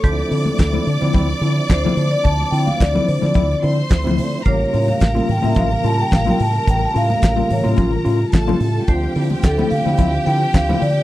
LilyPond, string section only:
\new Staff \with { instrumentName = "String section" } { \time 4/4 \key d \minor \tempo 4 = 108 <d'' d'''>1~ | <d'' d'''>2~ <d'' d'''>8 <c'' c'''>4. | <bes' bes''>1~ | <bes' bes''>2. <a' a''>4 |
<g' g''>1 | }